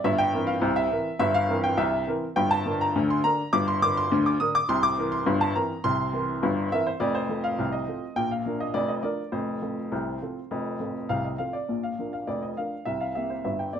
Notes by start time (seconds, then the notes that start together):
0.04 G1 G2 E5
0.18 G5
0.33 E3 C4 A#4
0.47 F5
0.62 C2 C3
0.76 E5
0.91 E3 C4 A#4
1.19 G1 G2 E5
1.34 F5
1.49 E3 C4 A#4
1.64 G5
1.77 C2 C3 E5
2.07 E3 C4 A#4
2.36 G1 G2 G5
2.51 A5
2.66 D3 D4 A#4
2.81 A#5
2.96 D2 D3
3.10 C6
3.24 D3 D4 A#4 A#5
3.53 G1 G2 D6
3.68 C6
3.82 D3 D4 A#4 D6
3.97 C6
4.12 D2 D3
4.26 D6
4.40 D3 D4 A#4 D#6
4.55 D6
4.69 C2 C3 C6
4.83 D6
4.98 E3 C4 A#4
5.12 C6
5.26 G1 G2
5.41 A5
5.55 E3 C4 A#4 A#5
5.84 C2 C3 C6
6.13 E3 C4 A#4
6.43 G1 G2
6.72 E3 C4 A#4 E5
6.87 C5
7.00 F1 F2 D5
7.15 C5
7.29 F3 C4 A4
7.44 F5
7.59 C2 C3
7.72 D#5
7.88 F3 C4 A4
8.16 A#1 A#2 G5
8.31 F5
8.46 F3 D4 A#4
8.60 D#5
8.74 F1 F2 D5
8.89 D#5
9.03 F3 D4 A#4 D5
9.32 F1 F2 C5
9.62 F3 C4 A4
9.92 C2 C3
10.22 F3 C4 A4
10.51 F1 F2
10.80 F3 C4 A4
11.09 C2 C3 F5
11.25 D#5
11.38 F3 C4 A4 F5
11.53 D5
11.69 A#1 A#2
11.83 F5
11.99 F3 D4 A#4
12.13 F5
12.27 F1 F2 D5
12.43 D#5
12.57 F3 D4 A#4 F5
12.85 C2 C3 E5
13.01 F5
13.15 A#3 C4 G4 E5
13.30 C5
13.45 G1 G2 E5
13.59 G5
13.73 A#3 C4 G4 D5